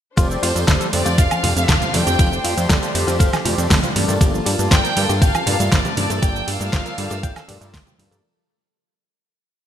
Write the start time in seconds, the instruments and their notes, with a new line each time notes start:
0.16 analog synth bass F1, synth arpeggio sound D3, string section A3 D4 F4 C5, clean electric guitar F4, analog polysynth G4 A4 C5 D5, kick, closed hi-hat, ride, tambourine, cabasa
0.31 synth arpeggio sound F3, tambourine, cabasa
0.43 analog synth bass F2, synth arpeggio sound A3, clean electric guitar F4, violin section C5, open hi-hat, ride
0.55 analog synth bass F2, synth arpeggio sound C4, closed hi-hat, tambourine, cabasa
0.68 analog synth bass F1, synth arpeggio sound D3, clean electric guitar A4, kick, snare, closed hi-hat, ride, tambourine, cabasa
0.80 synth arpeggio sound F3, clean electric guitar A4, closed hi-hat, tambourine, cabasa
0.93 analog synth bass F2, synth arpeggio sound A3, analog polysynth G4 A4 C5 D5, violin section D5, open hi-hat, ride
1.06 analog synth bass F2, synth arpeggio sound C4, clean electric guitar F4, closed hi-hat, tambourine, cabasa
1.18 analog synth bass F1, synth arpeggio sound D3, clean electric guitar F5, violin section F5, kick, closed hi-hat, ride, tambourine, cabasa
1.31 synth arpeggio sound F3, closed hi-hat, tambourine, high conga, cabasa, high woodblock
1.43 analog synth bass F2, synth arpeggio sound A3, clean electric guitar F4, analog polysynth G4 A4 C5 D5, open hi-hat, ride, low conga
1.56 analog synth bass F2, synth arpeggio sound C4, analog polysynth G4 A4 C5 F5, violin section F5, closed hi-hat, tambourine, cabasa
1.63 violin section E5
1.68 analog synth bass F1, synth arpeggio sound D3, clean electric guitar A4, violin section F5, kick, snare, closed hi-hat, ride, tambourine, cabasa
1.81 synth arpeggio sound F3, clean electric guitar F4, closed hi-hat, tambourine, high conga, low conga, cabasa
1.93 analog synth bass F2, synth arpeggio sound A3, analog polysynth G4 A4 C5 D5, violin section G5, open hi-hat, ride, high conga, low conga
2.07 analog synth bass F2, synth arpeggio sound C4, clean electric guitar G4, closed hi-hat, tambourine, cabasa
2.19 analog synth bass F1, synth arpeggio sound D3, clean electric guitar F4, string section G4, kick, closed hi-hat, ride, tambourine, cabasa
2.32 synth arpeggio sound F3, tambourine, cabasa
2.44 analog synth bass F2, synth arpeggio sound A3, clean electric guitar F4, open hi-hat, ride
2.57 analog synth bass F2, synth arpeggio sound C4, closed hi-hat, tambourine, cabasa
2.69 analog synth bass F1, synth arpeggio sound D3, clean electric guitar A4, kick, snare, closed hi-hat, ride, tambourine, cabasa
2.82 synth arpeggio sound F3, clean electric guitar A4, closed hi-hat, tambourine, cabasa
2.95 analog synth bass F2, synth arpeggio sound A3, analog polysynth G4 A4 C5 D5, open hi-hat, ride
3.07 analog synth bass F2, synth arpeggio sound C4, clean electric guitar F4, closed hi-hat, tambourine, cabasa
3.19 analog synth bass F1, synth arpeggio sound D3, analog polysynth G4 A4 C5, clean electric guitar F5, kick, closed hi-hat, ride, tambourine, cabasa
3.33 synth arpeggio sound F3, snare, closed hi-hat, tambourine, high conga, cabasa, high woodblock
3.45 analog synth bass F2, synth arpeggio sound A3, clean electric guitar F4, analog polysynth G4 A4 C5 D5, open hi-hat, ride, low conga
3.58 analog synth bass F2, synth arpeggio sound C4, closed hi-hat, tambourine, cabasa
3.70 analog synth bass F1, synth arpeggio sound D3, clean electric guitar A4, kick, snare, open hi-hat, ride, tambourine, cabasa
3.83 synth arpeggio sound F3, clean electric guitar F4, closed hi-hat, tambourine, high conga, low conga, cabasa
3.95 analog synth bass G2, synth arpeggio sound G3, string section G3 A#3 F4 A5, analog polysynth A#3 F4 A4 D5, open hi-hat, ride, high conga, low conga
4.08 analog synth bass G2, synth arpeggio sound A3, clean electric guitar A4, closed hi-hat, tambourine, cabasa
4.21 analog synth bass G1, synth arpeggio sound D3, clean electric guitar G4, kick, closed hi-hat, ride, tambourine, cabasa
4.34 synth arpeggio sound F3, tambourine, cabasa
4.46 analog synth bass G2, synth arpeggio sound G3, clean electric guitar G4, open hi-hat, ride
4.59 analog synth bass G2, synth arpeggio sound A3, closed hi-hat, tambourine, cabasa
4.71 analog synth bass G1, synth arpeggio sound D3, clean electric guitar C5, violin section G5, kick, snare, closed hi-hat, ride, tambourine, cabasa
4.84 synth arpeggio sound F3, clean electric guitar A#4, closed hi-hat, tambourine, cabasa
4.97 analog synth bass G2, synth arpeggio sound G3, analog polysynth F4 A4 A#4 D5, open hi-hat, ride
5.09 analog synth bass G2, synth arpeggio sound A3, clean electric guitar G4, closed hi-hat, tambourine, cabasa
5.21 analog synth bass G1, synth arpeggio sound D3, violin section F5, clean electric guitar G5, kick, closed hi-hat, ride, tambourine, cabasa
5.34 synth arpeggio sound F3, closed hi-hat, tambourine, high conga, cabasa, high woodblock
5.46 analog synth bass G2, synth arpeggio sound G3, analog polysynth F4 A4 A#4 D5, clean electric guitar G4, open hi-hat, ride, low conga
5.59 analog synth bass G2, synth arpeggio sound A3, analog polysynth F4 A4 A#4 E5, closed hi-hat, tambourine, cabasa
5.72 analog synth bass G1, synth arpeggio sound D3, clean electric guitar C5, violin section D5, kick, snare, closed hi-hat, ride, tambourine, cabasa
5.84 synth arpeggio sound F3, clean electric guitar G4, closed hi-hat, tambourine, high conga, low conga, cabasa
5.97 analog synth bass G2, synth arpeggio sound G3, analog polysynth A#3 F4 A4 D5, string section E6, open hi-hat, ride, high conga, low conga
6.10 analog synth bass G2, synth arpeggio sound A3, clean electric guitar A4, closed hi-hat, tambourine, cabasa
6.22 analog synth bass G1, synth arpeggio sound D3, clean electric guitar G4, violin section G5, kick, closed hi-hat, ride, tambourine, cabasa
6.35 synth arpeggio sound F3, tambourine, cabasa
6.47 analog synth bass G2, synth arpeggio sound G3, clean electric guitar G4, violin section F5, open hi-hat, ride
6.60 analog synth bass G2, synth arpeggio sound A3, closed hi-hat, tambourine, cabasa
6.73 analog synth bass G1, synth arpeggio sound D3, clean electric guitar C5, kick, snare, closed hi-hat, ride, tambourine, cabasa
6.85 synth arpeggio sound F3, clean electric guitar A#4, closed hi-hat, tambourine, cabasa
6.98 analog synth bass G2, synth arpeggio sound G3, analog polysynth F4 A4 A#4 D5, open hi-hat, ride
7.10 analog synth bass G2, synth arpeggio sound A3, clean electric guitar G4, closed hi-hat, tambourine, cabasa
7.23 analog synth bass G1, synth arpeggio sound D3, analog polysynth F4 A#4 F5, clean electric guitar G5, kick, closed hi-hat, ride, tambourine, cabasa
7.36 synth arpeggio sound F3, snare, closed hi-hat, tambourine, high conga, cabasa, high woodblock
7.48 analog synth bass G2, synth arpeggio sound G3, analog polysynth F4 A4 A#4 D5, clean electric guitar G4, open hi-hat, ride, low conga
7.61 analog synth bass G2, synth arpeggio sound A3, closed hi-hat, tambourine, cabasa
7.73 analog synth bass G1, synth arpeggio sound D3, clean electric guitar C5, kick, snare, open hi-hat, ride, tambourine, cabasa
7.86 synth arpeggio sound F3, clean electric guitar G4, closed hi-hat, tambourine, high conga, low conga, cabasa
7.98 analog synth bass G2, synth arpeggio sound G3, analog polysynth F4 A4 A#4 D5, open hi-hat, ride, high conga, low conga
8.11 analog synth bass G2, synth arpeggio sound A3, clean electric guitar A4, closed hi-hat, tambourine, cabasa